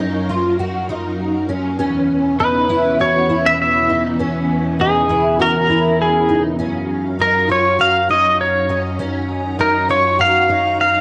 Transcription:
Already playing: F#2 F#3 A#4 F5
0.00 D#4
0.29 F4
0.59 F#4
0.89 D#4
1.49 C#4
1.79 E2 E3 B3 C#4
2.39 D#4 B4
2.69 E4
2.99 F#4 C#5
3.29 E4
3.46 E5
3.62 E5
3.89 D#4
4.19 C#4
4.79 D#4 G#4
5.09 E4
5.39 F#4 A#4
5.69 E4
6.02 G#4
6.29 D#4
6.58 F#2 F#3 C#4 F5 A#5
7.19 D#4 A#4
7.49 F4 C#5
7.79 F#4 F5
8.09 D#4 D#5
8.41 C#5
8.69 C#4
8.99 C#4 D#4
9.59 D#4 A#4
9.89 F4 C#5
10.19 F#4 F5
10.49 D#4
10.81 F5

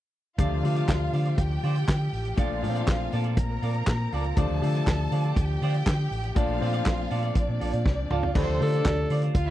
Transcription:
0.38 D2 C3 F3 A3 D4 F4 C5 D5 F5, kick, closed hi-hat
0.51 D2
0.63 C3 D3 F3 A3 F4 C5 D5, open hi-hat
0.75 F4 C5 D5, closed hi-hat
0.88 D2, muted clean electric guitar stroke, kick, snare, clap, closed hi-hat
1.00 muted clean electric guitar stroke
1.13 D3 F4 C5 D5, open hi-hat
1.25 F4 C5 D5, closed hi-hat
1.38 D2 G4 G5, muted clean electric guitar stroke, kick, closed hi-hat
1.50 muted clean electric guitar stroke
1.63 D3 F4 C5 D5, open hi-hat
1.76 muted clean electric guitar stroke, closed hi-hat
1.88 D3, muted clean electric guitar stroke, kick, snare, clap, closed hi-hat
2.00 muted clean electric guitar stroke
2.13 A1, open hi-hat
2.25 muted clean electric guitar stroke, closed hi-hat
2.37 A#1 A#2 F3 A3 D4 F4 A4 D5 F5, kick, closed hi-hat
2.51 A#1
2.62 A#2 F3 A3 A#3 F4 A4 D5, open hi-hat
2.69 C4
2.75 F4 A4 D5, closed hi-hat
2.87 A#1, muted clean electric guitar stroke, kick, snare, clap, closed hi-hat
3.00 muted clean electric guitar stroke
3.12 A#2 F4 A4 D5, open hi-hat
3.24 F4 A4 D5, closed hi-hat
3.37 A#1 A#4 A#5, muted clean electric guitar stroke, kick, closed hi-hat
3.50 muted clean electric guitar stroke
3.62 A#2 F4 A4 D5, open hi-hat
3.74 muted clean electric guitar stroke, closed hi-hat
3.87 A#2, kick, snare, clap, closed hi-hat
4.00 muted clean electric guitar stroke
4.12 C#2 F4 A4 D5, open hi-hat
4.24 muted clean electric guitar stroke, closed hi-hat
4.36 D2 C3 F3 A3 D4 F4 A4 C5 D5 A5, kick, closed hi-hat
4.50 D2
4.61 C3 D3 F3 A3 D4 F4 C5 D5, open hi-hat
4.74 F4 C5 D5, closed hi-hat
4.87 D2, muted clean electric guitar stroke, kick, snare, clap, closed hi-hat
4.99 muted clean electric guitar stroke
5.12 D3 F4 C5 D5, open hi-hat
5.24 F4 C5 D5, closed hi-hat
5.36 D2 G4 G5, muted clean electric guitar stroke, kick, closed hi-hat
5.50 muted clean electric guitar stroke
5.62 D3 F4 C5 D5, open hi-hat
5.74 muted clean electric guitar stroke, closed hi-hat
5.86 D3, kick, snare, clap, closed hi-hat
6.00 muted clean electric guitar stroke
6.11 A1, open hi-hat
6.24 muted clean electric guitar stroke, closed hi-hat
6.35 A#1 A#2 F3 A3 D4 F4 A4 D5 F5, kick, closed hi-hat
6.49 A#1
6.60 A#2 F3 A3 C4 F4 A4 D5, open hi-hat
6.73 F4 A4 D5, closed hi-hat
6.85 A#1, muted clean electric guitar stroke, kick, snare, clap, closed hi-hat
6.99 muted clean electric guitar stroke
7.10 A#2 F4 A4 D5, open hi-hat
7.22 F4 A4 D5, closed hi-hat
7.35 A#1 D4 D5, muted clean electric guitar stroke, kick, closed hi-hat
7.48 A#2, muted clean electric guitar stroke
7.60 A#1 F4 A4 D5, open hi-hat
7.73 A#2, muted clean electric guitar stroke, closed hi-hat
7.86 C2, kick, snare
7.98 muted clean electric guitar stroke
8.10 C#2 F4 A4 D5, mid tom
8.23 muted clean electric guitar stroke, floor tom
8.34 D2 C3 F3 A3 C4 D4 F4 A4 C5 D5, kick, crash
8.48 D2, muted clean electric guitar stroke
8.59 C3 D3 F3 A3 C#4 F4 A4 C5 D5, open hi-hat
8.66 D4
8.72 D4 F4 C5 D5, closed hi-hat
8.85 D2, muted clean electric guitar stroke, kick, snare, clap, closed hi-hat
8.98 muted clean electric guitar stroke
9.10 D3 F4 C5 D5, open hi-hat
9.22 F4 C5 D5, closed hi-hat
9.35 D2 F4 F5, muted clean electric guitar stroke, kick, closed hi-hat
9.47 E4 E5

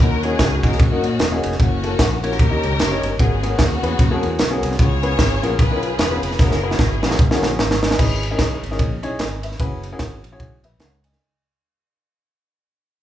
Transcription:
0.00 D#2 D#3 A#3 C#4 D#4 F#4 A#4, kick
0.23 A#3 C#4 D#4 F#4 G#4 C#5, ride
0.39 C#2, kick, snare, ride
0.63 D#2 A#3 C#4 D#4 F#4 G#4 A#4, kick, ride
0.72 snare
0.79 F#2 A#3 C#4 F#4, kick, ride
0.91 A#3 C#4 D#4 F#4 A#4
1.04 A#2, ride
1.19 E1, snare, ride
1.32 A#3 C#4 D#4 F#4 G#4
1.43 F1, ride
1.52 snare
1.60 F#1 A#3 C#4 E4 F#4 A#4, kick, ride
1.83 A#3 C#4 E4 F#4 A4, ride
1.88 A#4
1.99 A#1, kick, snare, ride
2.23 A#3 C#4 E4 F#4 G4 A#4 C#5, ride
2.32 snare
2.39 D#2 D#3, kick, ride
2.50 A#3 C#4 D#4 G4 A#4
2.63 C#2, ride
2.79 F#1, snare, ride
2.91 A#3 C#4 D#4 G4 C#5
3.03 G1, ride
3.19 G#1 G#2 B3 C#4 F#4 G#4 A#4, kick, ride
3.42 A#3 B3 C#4 F#4 G#4 A#4, ride
3.59 D#2, kick, snare, ride
3.83 E2 B3 C#4 F#4 G#4 B4, ride
3.99 F#2, kick, ride
4.11 B3 C#4 F#4 G#4 A4
4.16 A#4
4.23 E2, ride
4.39 B1, snare, ride
4.50 B3 C#4 F#4 G#4 A#4
4.63 C2, ride
4.71 snare
4.79 C#2 C#3 B3 C#4 F4 G#4 B4 C#5, kick, ride
5.03 B3 C#4 F4 G#4 B4, ride
5.19 G#1, kick, snare, ride
5.43 A#1 B3 C#4 F4 G#4 A#4, ride
5.59 B1 F4 G#4 B4, kick, ride
5.71 B3 C#4 D#4 G#4 A#4
5.76 F4
5.83 ride
5.99 E1 B4, snare, ride
6.11 B3 C#4 F4 G#4 B4
6.23 F1 B4, ride
6.31 snare
6.39 F#1 C#4 E4 F#4 G#4 A#4 B4, kick, snare
6.51 snare
6.63 B3 C#4 E4 F#4 G#4 B4
6.71 snare
6.79 G#1, kick, snare
7.03 A#1 C#4 E4 F#4 G#4 B4, snare
7.11 snare
7.19 B1, kick
7.31 C#4 E4 F#4 G#4 A#4, snare
7.43 A#1, snare
7.59 G#1 B4 E5, snare
7.71 snare
7.82 D#5 G#5, snare
7.91 snare
7.99 G#1 G#2 C#4 D#4 E4 G#4 B4, kick, crash
8.23 ride
8.31 C#4 D#4 E4 G#4 A#4
8.39 B1, kick, snare, ride
8.63 G#1, ride
8.71 C#4 D#4 E4 G#4 A#4, snare
8.79 A#1, kick, ride
9.03 B1 C#4 D#4 E4 G#4 C#5, ride
9.19 G#1 D#5 G#5, snare, ride
9.43 B4 E5, ride
9.52 snare
9.59 F#1 C#4 E4 F#4 G#4 B4, kick, ride
9.83 ride
9.92 C#4 E4 F#4 G#4 A#4
9.99 G#1, kick, snare, ride
10.23 A#1, ride
10.32 C#4 E4 F#4 G#4 C#5
10.40 B1, kick, ride
10.63 A#1 B4 E5, ride
10.79 C#2 C#5 F#5, snare, ride
11.04 D#5 G#5, ride
11.12 snare

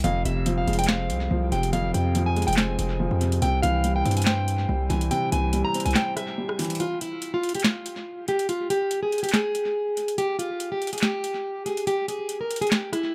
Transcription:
0.04 F1 F2 F5, closed hi-hat
0.25 F1 C3 E5, closed hi-hat
0.46 F3, closed hi-hat
0.58 F5
0.67 F1 G#3, closed hi-hat
0.73 closed hi-hat
0.79 G5, closed hi-hat
0.84 closed hi-hat
0.88 C4 F5, snare, clap, closed hi-hat
1.10 C2, closed hi-hat
1.31 C2 F3
1.52 F1 C3 G5, closed hi-hat
1.63 closed hi-hat
1.73 F2 F5, closed hi-hat
1.94 F2 C3 G5, closed hi-hat
2.15 F3, closed hi-hat
2.26 G#5
2.36 G#3, closed hi-hat
2.42 closed hi-hat
2.47 F1 G5, closed hi-hat
2.53 closed hi-hat
2.57 C4 G#5, snare, clap, closed hi-hat
2.79 F1, closed hi-hat
3.00 F3
3.11 F2
3.21 C3, closed hi-hat
3.32 closed hi-hat
3.42 C2 C3 G5, closed hi-hat
3.62 C2 E3 F5, closed hi-hat
3.84 G3, closed hi-hat
3.96 G5
4.05 G2 C4, closed hi-hat
4.11 closed hi-hat
4.17 G#5, closed hi-hat
4.22 closed hi-hat
4.26 C5 G5, snare, clap, closed hi-hat
4.48 closed hi-hat
4.69 C2 G3
4.90 C2 E3 G#5, closed hi-hat
5.01 closed hi-hat
5.11 C3 G5, closed hi-hat
5.32 C2 E3 G#5, closed hi-hat
5.53 G3, closed hi-hat
5.65 A#5
5.74 C4, closed hi-hat
5.80 closed hi-hat
5.85 C2 G#5, closed hi-hat
5.91 closed hi-hat
5.95 C5 G5, snare, clap, closed hi-hat
6.16 E5, cross-stick, closed hi-hat
6.38 G3
6.49 cross-stick
6.59 E3, closed hi-hat, open hi-hat
6.65 closed hi-hat
6.70 closed hi-hat
6.75 closed hi-hat
6.80 F4, closed hi-hat
7.01 E4, closed hi-hat
7.22 closed hi-hat
7.34 F4
7.43 closed hi-hat
7.49 closed hi-hat
7.55 G4, closed hi-hat
7.60 closed hi-hat
7.64 F4, snare, clap, closed hi-hat
7.86 closed hi-hat
8.28 G4, closed hi-hat
8.39 closed hi-hat
8.49 F4, closed hi-hat
8.70 G4, closed hi-hat
8.91 closed hi-hat
9.03 G#4
9.12 closed hi-hat
9.18 closed hi-hat
9.23 G4, closed hi-hat
9.29 closed hi-hat
9.33 G#4, snare, clap, closed hi-hat
9.55 closed hi-hat
9.97 closed hi-hat
10.08 closed hi-hat
10.18 G4, closed hi-hat
10.39 F4, closed hi-hat
10.60 closed hi-hat
10.72 G4
10.82 closed hi-hat
10.87 closed hi-hat
10.93 G#4, closed hi-hat
10.98 closed hi-hat
11.02 G4, snare, clap
11.24 closed hi-hat
11.66 G#4, closed hi-hat
11.77 closed hi-hat
11.87 G4, closed hi-hat
12.08 G#4, closed hi-hat
12.29 closed hi-hat
12.41 A#4
12.51 closed hi-hat
12.56 closed hi-hat
12.61 G#4, closed hi-hat
12.67 closed hi-hat
12.71 G4, snare, clap, closed hi-hat
12.93 E4, cross-stick, closed hi-hat

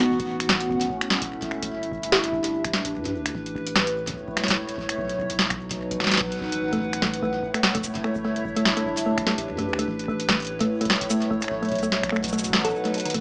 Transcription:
Already playing: B3 F#4 F#5
0.01 snare
0.03 snare
0.08 A1 A2
0.20 kick, closed hi-hat
0.30 A3 C#4
0.40 finger snap, closed hi-hat
0.49 kick, snare
0.60 closed hi-hat
0.69 kick
0.75 kick
0.81 E4 E5, kick, closed hi-hat
0.85 kick
0.90 kick
1.01 finger snap, closed hi-hat
1.10 E1, snare
1.22 kick, closed hi-hat
1.42 kick, closed hi-hat
1.51 finger snap
1.62 kick, closed hi-hat
1.71 G1 D4
1.83 closed hi-hat
1.92 kick
2.03 G4, closed hi-hat
2.12 kick, snare
2.24 closed hi-hat
2.33 kick
2.44 B4, closed hi-hat
2.64 finger snap, kick, closed hi-hat
2.73 D1, snare
2.85 kick, closed hi-hat
2.94 G2
3.05 kick, closed hi-hat
3.14 D2
3.26 finger snap, closed hi-hat
3.35 A1 A2, kick
3.46 closed hi-hat
3.55 kick
3.65 C#5, closed hi-hat
3.72 A3, finger snap, kick, snare
3.87 closed hi-hat
4.07 kick, closed hi-hat
4.10 kick
4.13 kick
4.16 kick
4.20 kick
4.23 kick
4.28 kick
4.37 E1, finger snap, snare, closed hi-hat
4.44 snare
4.48 kick, snare, closed hi-hat
4.69 closed hi-hat
4.78 kick
4.89 finger snap, closed hi-hat
4.98 B1 B2, kick
5.09 closed hi-hat
5.18 kick
5.22 kick
5.25 kick
5.30 F#3 B4, kick, closed hi-hat
5.32 D#4, kick
5.36 kick, snare
5.50 finger snap, kick, closed hi-hat
5.71 F#5, kick, closed hi-hat
5.91 kick, closed hi-hat
6.00 A1, finger snap, snare
6.04 snare
6.07 snare
6.11 snare, closed hi-hat
6.14 snare
6.17 B1, kick, snare
6.32 closed hi-hat
6.41 kick
6.52 F#1, closed hi-hat
6.61 A1 A2
6.73 A3, kick, closed hi-hat
6.75 kick
6.77 kick
6.79 kick
6.93 finger snap, closed hi-hat
6.99 A3, kick, snare
7.14 closed hi-hat
7.21 A3 C#5, kick
7.36 E4 E5
7.43 kick
7.54 A3, finger snap, closed hi-hat
7.63 E1, snare
7.75 A3, kick, closed hi-hat
7.77 kick
7.81 kick
7.84 kick, cabasa
7.88 kick
7.91 kick
7.95 kick, closed hi-hat
7.97 kick
8.01 A3, finger snap, kick
8.16 kick
8.25 G1 A3 D4
8.36 closed hi-hat
8.45 kick
8.56 A3, closed hi-hat
8.65 finger snap, kick, snare
8.77 A3, closed hi-hat
8.81 G4
8.86 kick
8.97 B4, closed hi-hat, cabasa
9.06 A3
9.18 finger snap, kick, closed hi-hat
9.27 D1 A3, snare
9.38 kick, closed hi-hat
9.47 G2
9.58 A3, kick, closed hi-hat
9.67 D2
9.73 finger snap
9.79 A3, closed hi-hat
9.88 A1 A2, kick
9.99 C#5, closed hi-hat
10.08 A3, kick
10.17 E4, closed hi-hat
10.28 A3, finger snap, kick, snare
10.40 closed hi-hat
10.42 closed hi-hat
10.45 closed hi-hat
10.47 closed hi-hat
10.60 A3, kick, closed hi-hat
10.81 A3, closed hi-hat
10.85 kick, closed hi-hat
10.90 E1, finger snap, snare, closed hi-hat
10.96 closed hi-hat
11.01 kick, closed hi-hat
11.10 A3, cabasa
11.22 closed hi-hat
11.31 A3, kick
11.42 finger snap, closed hi-hat
11.44 finger snap
11.48 B1 B2, finger snap, kick
11.62 A3, closed hi-hat
11.65 closed hi-hat
11.69 kick, closed hi-hat
11.72 F#3, closed hi-hat
11.75 closed hi-hat
11.78 B4, closed hi-hat
11.83 A3, cabasa
11.88 F#5, snare
12.03 finger snap, kick, closed hi-hat
12.09 A3, finger snap
12.16 finger snap
12.24 kick, closed hi-hat, cabasa
12.28 cabasa
12.33 A3, cabasa
12.39 cabasa
12.44 kick, closed hi-hat, cabasa
12.46 kick
12.50 A1 A3, finger snap, kick, snare
12.65 A4, closed hi-hat
12.85 A3, closed hi-hat
12.94 closed hi-hat
12.98 closed hi-hat
13.00 closed hi-hat
13.05 D#3, closed hi-hat
13.10 closed hi-hat
13.14 A1 A2 A3 F#4 F#5, kick, closed hi-hat

